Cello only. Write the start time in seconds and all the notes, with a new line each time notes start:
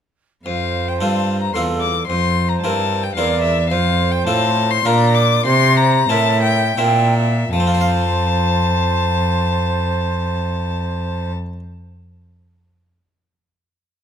0.45 F2
1.01 G2
1.54 E2
2.08 F2
2.62 G2
3.17 E2
3.71 F2
4.27 A2
4.85 A#2
5.46 C3
6.10 A2
6.78 A#2
7.52 F2